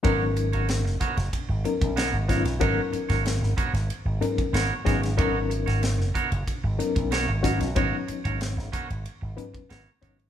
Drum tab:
RD |x-xxx-xxx-xxx-xx|x-xxx-xxx-xxx-xx|x-xxx-xxx-xxx-xx|x-xxx-xxx-xxx-xx|
HH |--p---p---p---p-|--p---p---p---p-|--p---p---p---p-|--p---p---p---p-|
SD |----oo-o----o-oo|---ooo-o----o-oo|---ooo------o-oo|----oo------o---|
BD |o-----o-o--o--o-|o--o--o----o--o-|o-----o-o--o--o-|o--o--o----o--o-|